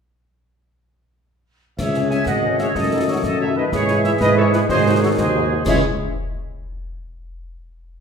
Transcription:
1.78 C#2 C#3 G#3 G#4 C#5 E5, concert bass drum, snare, crash
1.94 G#3 C#4 G#4, snare
2.10 G#3 C#4 G#4 E5 G#5, snare
2.26 G#1 D#5 F#5, concert bass drum, snare
2.44 G#3 C#4 G#4
2.59 G#3 C#4 G#4 C#5 E5, snare
2.75 F#2 D#3 A3 A4 D#5, concert bass drum, snare
2.92 A3 D#4 F#4
3.08 A3 D#4 F#4 A4 C#5
3.23 F#2 A4 D#5, concert bass drum, snare
3.40 A3 D#4 F#4 C#5 E5
3.55 A3 D#4 F#4 B4 D#5
3.71 G#2 E3 G#3 G#4 C#5 E5, concert bass drum, snare
3.88 G#3 E4, snare
4.04 G#3 E4 C#5 E5, snare
4.19 G#2 B4 D#5, concert bass drum, snare
4.36 G#3 E4 A4 C#5
4.53 G#3 E4 G#4 B4, snare
4.68 G#2 D#3 F#3 F#4 G#4 C5 D#5, concert bass drum, snare
4.85 G#3 D#4 F#4
5.02 G#3 D#4 F#4 A4 C#5
5.17 D#2 F#4 G#4 C5 D#5, concert bass drum, snare
5.34 G#3 D#4 F#4
5.51 G#3 D#4 F#4
5.66 C#2 E3 G#3 E4 G#4 C#5 E5, concert bass drum, snare, crash

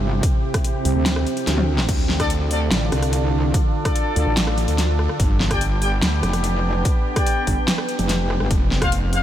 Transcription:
Already playing: G1 C3 C4 E4 G4
0.23 kick, closed hi-hat
0.54 kick, cross-stick, closed hi-hat
0.64 closed hi-hat
0.85 C2, open hi-hat
0.96 D2
1.06 snare, closed hi-hat
1.16 cross-stick
1.27 closed hi-hat
1.37 closed hi-hat
1.47 D2, snare, closed hi-hat
1.58 high tom
1.78 snare
1.89 D2 D3 D4 F4 A4, kick, closed hi-hat, crash
2.09 snare
2.20 D4 A4 D5, kick, cross-stick, closed hi-hat
2.30 closed hi-hat
2.51 D4 A4 D5, open hi-hat
2.71 A1, snare, closed hi-hat
2.92 C2, cross-stick, closed hi-hat
3.02 cross-stick, closed hi-hat
3.13 closed hi-hat
3.54 kick, closed hi-hat
3.85 D4 A4 D5, kick, cross-stick, closed hi-hat
3.96 closed hi-hat
4.16 D2 D4 A4 D5, open hi-hat
4.26 A1
4.37 snare, closed hi-hat
4.47 cross-stick
4.58 closed hi-hat
4.68 D2, closed hi-hat
4.78 snare, closed hi-hat
4.99 cross-stick
5.09 cross-stick
5.20 G1 B3 D4 G4, kick, closed hi-hat
5.40 snare
5.51 G4 D5 G5, kick, cross-stick, closed hi-hat
5.61 closed hi-hat
5.82 G4 D5 G5, open hi-hat
6.02 D2, snare, closed hi-hat
6.23 F1, cross-stick, closed hi-hat
6.33 cross-stick, closed hi-hat
6.44 closed hi-hat
6.85 kick, closed hi-hat
7.16 G4 D5 G5, kick, cross-stick, closed hi-hat
7.26 closed hi-hat
7.47 G1, kick, open hi-hat
7.68 snare, closed hi-hat
7.78 cross-stick
7.89 closed hi-hat
7.99 F1, closed hi-hat
8.09 snare, closed hi-hat
8.30 cross-stick
8.40 G1, cross-stick
8.51 F1 A3 C4 F4, kick, closed hi-hat
8.71 snare
8.82 F4 C5 F5, kick, cross-stick, closed hi-hat
8.92 closed hi-hat
9.13 F4 C5 F5, open hi-hat

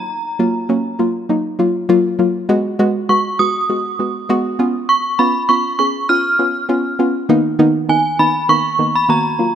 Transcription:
Already playing: F#3 A#3 F4 A#5
0.39 F#3 A#3 F4
0.69 F#3 A#3 C#4
0.99 F#3 A#3 F4
1.29 F#3 A#3 D#4
1.59 F#3 A#3 F4
1.89 F#3 A#3 F4
2.19 F#3 A#3 F4
2.49 G#3 B3 F#4
2.79 G#3 B3 F#4
3.09 G#3 B3 F#4 C#6
3.39 G#3 B3 F#4 D#6
3.69 G#3 B3 F#4
3.99 G#3 B3 F#4
4.29 G#3 B3 F#4
4.59 B3 C#4 F4
4.89 C#6
5.19 B3 C#4 F4 B5
5.49 B3 C#4 F4 C#6
5.79 B3 C#4 G#4 C#6
6.09 B3 C#4 F4 F6
6.39 B3 C#4 F4
6.69 B3 C#4 F4
6.99 B3 C#4 F4
7.29 D#3 A#3 B3 D#4
7.59 D#3 A#3 B3 D#4
7.89 D#3 A#3 B3 D#4 G#5
8.19 D#3 A#3 B3 D#4 B5
8.49 D#3 A#3 B3 D#4 C#6
8.79 D#3 A#3 B3 D#4
8.95 B5
9.09 D#3 A#3 B3 F#4 A#5
9.39 F#3 A#3 F4

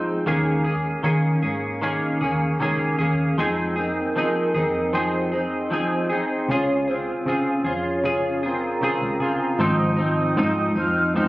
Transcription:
Already playing: F3 C4 D#4 G#4
0.26 D#2 D#3 A#3 C#4 G#4
0.64 A#3 C#4 G#4
1.03 D#3 A#3 C#4 G#4
1.42 G#2 A#3 C#4 G#4
1.82 D#3 A#3 C#4 G#4
2.21 D#2 A#3 C#4 G#4
2.60 C#2 D#3 A#3 C#4 G#4
2.99 D#2 A#3 C#4 G#4
3.38 F2 F3 C4 D#4 G#4
3.76 C4 D#4 G#4 A#4
4.16 F3 C4 D#4 G#4
4.54 F2 C4 D#4 G#4
4.93 F3 C4 D#4 G#4 C5
5.32 C4 D#4 G#4
5.70 F3 C4 D#4 G#4
6.09 C4 D#4 G#4
6.48 C#2 C#3 F4 G#4 C#5
6.88 C4 F4 G#4 C5
7.26 C#3 C4 F4 G#4
7.64 F2 F4 G#4 C#5
8.04 C#3 F4 G#4
8.43 C4 F4 G#4 A#5
8.81 C#3 C4 F4 G#4, muted fingered electric bass stroke
9.02 C#2
9.19 C#3 C4 F4 G#4
9.58 G#1 G#2 F3 C4 D#4 D#6
9.97 F3 C4 D#4
10.37 G#2 F3 C4 D#4 D#6
10.74 F2 F3 C4 D#4
10.79 F6
11.14 G#2 F3 C4 D#4 F6

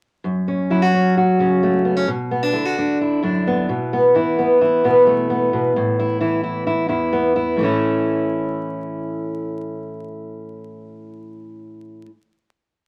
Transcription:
0.24 F#2
0.48 C#4
0.70 F#3 E4
0.82 F#4
0.94 C#4
1.17 F#4
1.39 C#3 C#4
1.63 A3
1.85 B3
1.97 C#4
2.08 B2
2.31 B3
2.43 D4
2.53 D3 E4
2.65 F#4
2.78 D4
3.01 E4
3.23 F#2 D4
3.47 B3
3.69 B2
3.93 B3
4.15 E3 E4
4.39 B3
4.61 E4
4.84 B2 B3
5.07 A3
5.30 B3
5.53 B2
5.76 A2
6.00 E4
6.21 E3 E4
6.44 E4
6.67 E4
6.89 E2 E4
7.13 B3
7.36 E4
7.57 A2 E3
7.61 A3 C#4 E4

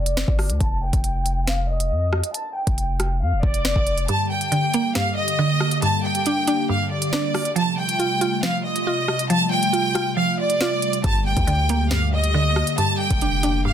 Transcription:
Already playing: F1 D5
0.06 closed hi-hat
0.17 snare
0.28 G1, kick
0.39 cross-stick, open hi-hat
0.50 D2, closed hi-hat
0.60 F1 A5, kick, closed hi-hat
0.83 G5
0.93 F1, kick, closed hi-hat
1.04 closed hi-hat
1.26 closed hi-hat
1.47 F5, snare, closed hi-hat
1.69 D#5
1.80 closed hi-hat
1.91 F2
2.13 cross-stick
2.24 closed hi-hat
2.34 A5, closed hi-hat
2.56 G5
2.67 F1, kick, closed hi-hat
2.78 closed hi-hat
3.00 cross-stick, closed hi-hat
3.21 F2 F5
3.32 F1
3.43 F1 D5, kick
3.54 closed hi-hat
3.65 snare
3.76 F1, kick
3.87 closed hi-hat
3.98 closed hi-hat
4.08 G2 D3 G3 A#3 G4 A5, closed hi-hat
4.31 G5
4.41 closed hi-hat
4.52 D3, closed hi-hat
4.74 A#3, closed hi-hat
4.95 G2 F5, snare, closed hi-hat
5.18 D#5
5.28 closed hi-hat
5.39 D3
5.60 cross-stick
5.71 closed hi-hat
5.82 G2 A5, closed hi-hat
6.04 G5
6.15 closed hi-hat
6.26 D4, closed hi-hat
6.47 D4, closed hi-hat
6.69 G2 F5
6.91 D5
7.02 closed hi-hat
7.13 D4, snare
7.34 cross-stick, open hi-hat
7.45 closed hi-hat
7.56 C3 F3 A3 F4 A5, closed hi-hat
7.78 G5
7.89 closed hi-hat
7.99 F4, closed hi-hat
8.21 F4, closed hi-hat
8.43 F3 F5, snare, closed hi-hat
8.65 D#5
8.76 closed hi-hat
8.87 F4
9.08 cross-stick
9.19 closed hi-hat
9.30 F3 A5, closed hi-hat
9.52 G5
9.63 closed hi-hat
9.73 F4, closed hi-hat
9.95 F4, cross-stick, closed hi-hat
10.17 F3 F5
10.39 D5
10.50 closed hi-hat
10.61 F4, snare
10.82 closed hi-hat
10.93 closed hi-hat
11.04 G1 G2 D3 A#3 G4 A5, kick, closed hi-hat
11.26 G5
11.37 D2, kick, closed hi-hat
11.47 D3, closed hi-hat
11.69 A#3, closed hi-hat
11.91 G2 F5, snare, closed hi-hat
12.13 D#5
12.24 closed hi-hat
12.34 D3
12.56 cross-stick
12.67 closed hi-hat
12.78 G2 A5, closed hi-hat
13.00 G5
13.11 F1, kick, closed hi-hat
13.21 D4, closed hi-hat
13.43 D4, closed hi-hat
13.65 G2 F5

